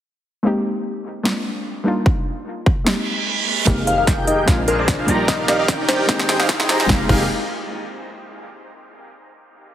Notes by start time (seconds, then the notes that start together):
0.43 G#3 A#3 C4 D#4 G4
1.23 G#3 A#3 C4 D4, snare
1.27 F4
1.84 G3 A#3 D4 D#4
1.88 F4
2.06 kick
2.66 kick
2.84 G#3 A#3 C4 D#4, snare, reverse cymbal
2.88 G4
3.65 F1 G#3 A#3 C4 D#4 G4 G#4 A#4 F5, kick, snare, closed hi-hat, riser
3.78 A#4
3.87 D#4 G4 G#4 A#4 C5 F5, closed hi-hat
3.98 D#4 G4 G#4 A#4 F5
4.07 D#4 G4 G#4 A#4 G5, kick, snare, closed hi-hat
4.18 F4
4.27 D#4 G4 G#4 A#4 D#5 G5, closed hi-hat
4.38 G#4
4.46 A#1 G#3 A#3 C4 D4 F4 F5, kick, snare, closed hi-hat
4.58 C5
4.68 D4 G#4 A#4 C5 D5 F5, closed hi-hat
4.78 D4 G#4 A#4 C5 D5
4.88 D4, kick, snare, closed hi-hat
4.99 D4 F4 G#4 A#4 C5 F5
5.06 A#1 G3 A#3 D4 D#4 F4 G4 A#4 D5 A#5, closed hi-hat
5.19 G4
5.28 D#4 G4 A#4 D5 D#5 F5, kick, snare, closed hi-hat
5.39 A#4
5.48 D#4 G4 A#4 D5 D#5 F5, snare, closed hi-hat
5.59 D#4 G4 A#4 D5 F5
5.68 D4 D#4 G4 A#4 D5 G5, kick, snare, closed hi-hat
5.79 D#4
5.88 D4 D#4 G4 A#4 C5 D5 G5, snare, closed hi-hat
5.99 G4
6.07 G#1 G#3 A#3 C4 D#4 G#4 G5, kick, snare, closed hi-hat
6.11 G4
6.19 D#5, snare
6.29 D#4 G4 G#4 C5 G5, snare, closed hi-hat
6.39 D#4 G4 G#4 C5 D#5 F5, snare
6.49 D#4, kick, snare, closed hi-hat
6.60 D#4 G4 G#4 C5 G5, snare
6.69 D#4 G4 G#4 C5 A#5, snare, closed hi-hat
6.80 C5, snare
6.86 F1 G#3 A#3 C4 F5, kick, snare
6.91 D#4 G4
7.06 F1 G#3 A#3 C4 D#4 G4 G#4 A#4 F5, kick, crash
7.11 D#4 G4